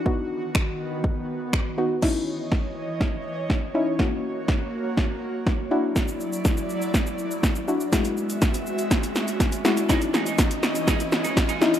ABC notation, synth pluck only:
X:1
M:4/4
L:1/8
Q:1/4=122
K:C#dor
V:1 name="Synth pluck"
[B,DF]3 z4 [B,DF] | [CDE]3 z4 [CDE] | [A,CF]3 z4 [=DEF]- | [=DEF]2 z4 z [DEF] |
[G,EF]3 z4 [G,EF] | [CDE]3 z4 [CDE] |]